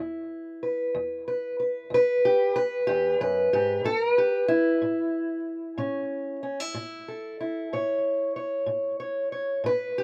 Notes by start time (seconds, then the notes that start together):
Already playing: E2 E4 B4
0.63 B4
0.95 E2
1.28 B4
1.60 B4
1.90 E2
1.94 B4
2.25 G4
2.56 B4
2.87 E2 G4
3.20 F#2 B4
3.53 G#2 G4
3.84 A2 A#4
4.13 B4
4.18 G4
4.48 E4
4.82 A2
5.78 A2 C#4
6.43 C#4
6.60 E4
6.74 A2
7.08 A4
7.41 E4
7.73 A2 C#5
8.36 C#5
8.66 A2
9.00 C#5
9.32 C#5
9.64 A2 B4
9.98 G4